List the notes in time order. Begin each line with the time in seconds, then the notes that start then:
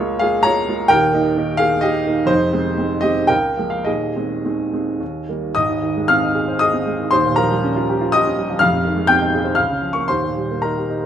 Already playing: C#2 C#5
0.00 G#3 A#3 F4
0.19 G#3 A#3 F4 G#4 F5
0.43 G#3 A#3 F4 C#5 A#5
0.68 G#3 A#3 F4
0.88 D#1 D#2 A#4 G5
1.13 D#3 A#3 D#4
1.37 D#3 A#3 D#4
1.57 D#3 A#3 D#4 G#4 F5
1.81 D#3 A#3 D#4 G4 D#5
2.06 D#3 A#3 D#4
2.26 F1 F2 D#4 C5
2.53 D#3 G#3 C4
2.78 D#3 G#3 C4
3.01 D#3 G#3 C4 G4 D#5
3.27 C#2 A#4 G5
3.57 F3 G#3 A#3
3.70 F5
3.85 D#1 D#2 G#4 D#5
4.16 D#3 G#3 C4
4.45 D#3 G#3 C4
4.72 D#3 G#3 C4
5.00 D#2
5.29 D#3 G3 A#3
5.55 G#1 D#5 D#6
5.69 D#2
5.83 D#3
5.97 G#3
6.08 C4 F5 F6
6.23 D#4
6.34 G#4
6.48 C5
6.59 G#4 D#5 D#6
6.74 C4
6.86 G#3
7.00 D#3
7.11 D#1 D#2 C5 C6
7.26 A#2
7.36 F3 A#4 A#5
7.51 G3
7.64 C#4
7.76 F4
7.89 G4
8.01 F4
8.12 G4 D#5 D#6
8.26 C#4
8.38 G3
8.50 F3
8.59 F1 F2 F5 F6
8.74 C3
8.85 D#3
8.96 G#3
9.07 C4 G5 G6
9.21 D#4
9.34 G#4
9.45 C5
9.55 C#2 F5 F6
9.70 C#3
9.82 F3
9.93 A#3 C#6
10.08 D#1 D#2 C5 C6
10.23 A#2
10.37 G3
10.51 A#3
10.62 D#4 A#4 A#5
10.77 G4
10.90 D#4